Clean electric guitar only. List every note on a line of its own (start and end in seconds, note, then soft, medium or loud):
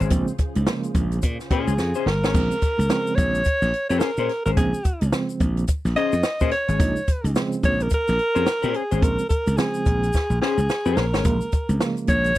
0.00 0.10 C#4 medium
0.00 0.09 G#4 medium
0.00 0.09 C5 medium
1.51 1.72 C#4 medium
1.51 1.73 G#4 medium
1.51 1.73 C5 loud
1.96 2.08 C#4 medium
1.96 2.07 G#4 medium
1.96 2.07 C5 medium
2.24 2.33 C#4 soft
2.24 2.33 G#4 medium
2.24 2.32 C#5 medium
3.90 4.09 C#4 medium
3.90 4.09 G#4 medium
3.90 4.09 C5 medium
4.19 4.31 C#4 medium
4.19 4.30 G#4 medium
4.19 4.30 C5 medium
4.47 4.56 C#4 soft
4.47 4.56 G#4 medium
4.47 4.55 C5 medium
5.96 6.13 C#4 loud
5.96 6.14 G#4 loud
5.96 6.14 C5 loud
6.41 6.53 C#4 medium
6.41 6.53 G#4 medium
6.41 6.52 C5 medium
6.68 6.78 C#4 soft
6.68 6.78 G#4 medium
6.68 6.77 C#5 medium
8.35 8.47 C#4 medium
8.35 8.47 G#4 medium
8.35 8.47 C5 medium
8.62 8.82 C#4 medium
8.62 8.82 G#4 medium
8.62 8.81 C5 medium
8.91 9.01 C#4 medium
8.91 9.01 G#4 medium
8.91 9.00 C5 medium
10.42 10.59 C#4 medium
10.42 10.59 G#4 medium
10.42 10.59 C5 medium
10.86 11.05 C#4 medium
10.86 11.05 G#4 medium
10.86 11.04 C5 medium
11.13 11.23 C#4 soft
11.13 11.23 G#4 medium
11.13 11.23 C#5 medium